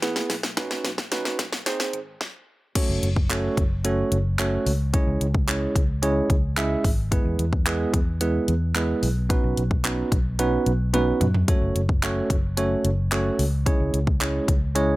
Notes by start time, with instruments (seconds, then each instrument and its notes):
Already playing: fingered electric bass E2
0.02 tine electric piano B3 E4 G#4 B4, snare, closed hi-hat
0.16 snare
0.30 fingered electric bass B1, snare, open hi-hat
0.43 snare
0.57 tine electric piano C#4 D#4 F#4 B4, kick, snare, closed hi-hat
0.71 snare
0.84 fingered electric bass B1, snare, closed hi-hat
0.98 kick, snare
1.12 tine electric piano C#4 D#4 F#4 B4, snare, closed hi-hat
1.25 snare
1.39 fingered electric bass B1, kick, snare, closed hi-hat
1.53 snare
1.66 tine electric piano C4 D#4 G#4 C5, snare, closed hi-hat
1.80 snare
1.93 fingered electric bass G#1, closed hi-hat
2.21 kick, snare
2.75 tine electric piano A3 C#4 F#4 A4 C#5, kick, closed hi-hat, crash
2.89 fingered electric bass F#1
3.03 fingered electric bass F#1, closed hi-hat
3.16 kick
3.30 tine electric piano A3 C#4 F#4 A4 C#5, clap, closed hi-hat
3.57 fingered electric bass F#1, kick, closed hi-hat
3.85 tine electric piano A3 C#4 F#4 A4 C#5, closed hi-hat
4.12 fingered electric bass F#1, closed hi-hat
4.39 tine electric piano A3 C#4 F#4 A4 C#5, clap, closed hi-hat
4.66 fingered electric bass C#2, open hi-hat
4.93 tine electric piano G#3 C#4 E4 G#4 C#5, kick, closed hi-hat
5.07 fingered electric bass C#2
5.21 fingered electric bass C#2, closed hi-hat
5.35 kick
5.48 tine electric piano G#3 C#4 E4 G#4 C#5, clap, closed hi-hat
5.76 fingered electric bass C#2, kick, closed hi-hat
6.02 tine electric piano G#3 C#4 E4 G#4 C#5, closed hi-hat
6.30 fingered electric bass C#2, kick, closed hi-hat
6.57 tine electric piano G#3 C#4 E4 G#4 E5, clap, closed hi-hat
6.84 fingered electric bass G#1, kick, open hi-hat
7.12 tine electric piano G#3 B3 E4 G#4 B4, kick, closed hi-hat
7.25 fingered electric bass E2
7.39 fingered electric bass E2, closed hi-hat
7.53 kick
7.66 tine electric piano G#3 B3 E4 G#4 B4, clap, closed hi-hat
7.94 fingered electric bass E2, kick, closed hi-hat
8.21 tine electric piano G#3 B3 E4 G#4 B4, closed hi-hat
8.48 fingered electric bass E2, closed hi-hat
8.75 tine electric piano G#3 B3 E4 G#4 B4, clap, closed hi-hat
9.03 fingered electric bass B1, open hi-hat
9.30 tine electric piano B3 C#4 D#4 F#4 B4, kick, closed hi-hat
9.44 fingered electric bass B1
9.57 fingered electric bass B1, closed hi-hat
9.71 kick
9.84 tine electric piano B3 C#4 D#4 F#4 B4, clap, closed hi-hat
10.12 fingered electric bass B1, kick, closed hi-hat
10.39 tine electric piano B3 C#4 D#4 F#4 B4, closed hi-hat
10.66 fingered electric bass B1, closed hi-hat
10.94 tine electric piano B3 C#4 D#4 F#4 B4, closed hi-hat, high tom
11.21 fingered electric bass F#2, closed hi-hat, mid tom
11.34 floor tom
11.48 tine electric piano A3 C#4 F#4 A4 C#5, kick, closed hi-hat
11.62 fingered electric bass F#1
11.75 fingered electric bass F#1, closed hi-hat
11.89 kick
12.03 tine electric piano A3 C#4 F#4 A4 C#5, clap, closed hi-hat
12.30 fingered electric bass F#1, kick, closed hi-hat
12.57 tine electric piano A3 C#4 F#4 A4 C#5, closed hi-hat
12.85 fingered electric bass F#1, closed hi-hat
13.12 tine electric piano A3 C#4 F#4 A4 C#5, clap, closed hi-hat
13.39 fingered electric bass C#2, open hi-hat
13.66 tine electric piano G#3 C#4 E4 G#4 C#5, kick, closed hi-hat
13.80 fingered electric bass C#2
13.94 fingered electric bass C#2, closed hi-hat
14.07 kick
14.21 tine electric piano G#3 C#4 E4 G#4 C#5, clap, closed hi-hat
14.48 fingered electric bass C#2, kick, closed hi-hat
14.75 tine electric piano G#3 C#4 E4 G#4 C#5, closed hi-hat